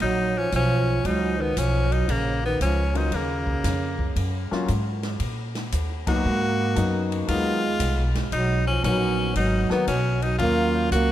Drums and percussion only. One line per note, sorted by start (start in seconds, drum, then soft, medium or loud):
0.00 kick soft
0.00 ride soft
0.52 kick soft
0.52 hi-hat pedal medium
0.52 ride medium
1.05 kick soft
1.05 ride medium
1.57 kick soft
1.57 hi-hat pedal soft
1.57 ride medium
1.92 ride soft
2.08 kick soft
2.08 ride medium
2.60 kick soft
2.60 hi-hat pedal soft
2.60 ride soft
2.95 ride soft
3.12 kick soft
3.12 ride medium
3.47 kick medium
3.64 kick soft
3.64 snare soft
3.64 hi-hat pedal soft
3.64 ride medium
3.99 kick medium
4.16 kick soft
4.16 ride medium
4.52 snare soft
4.68 kick soft
4.68 hi-hat pedal soft
4.68 ride soft
5.03 snare soft
5.03 ride soft
5.20 kick soft
5.20 ride medium
5.55 snare soft
5.55 ride soft
5.72 kick soft
5.72 hi-hat pedal medium
5.72 ride medium
6.07 kick medium
6.07 ride medium
6.76 kick soft
6.76 hi-hat pedal medium
6.76 ride medium
7.12 ride soft
7.28 kick soft
7.28 ride medium
7.80 kick soft
7.80 hi-hat pedal medium
7.80 ride medium
8.15 snare soft
8.15 ride soft
8.32 kick soft
8.32 ride medium
8.84 kick soft
8.84 hi-hat pedal soft
8.84 ride medium
9.35 kick soft
9.35 ride medium
9.70 snare soft
9.87 kick soft
9.87 hi-hat pedal medium
9.87 ride medium
10.22 ride soft
10.39 kick soft
10.39 ride medium
10.91 kick soft
10.91 hi-hat pedal medium
10.91 ride soft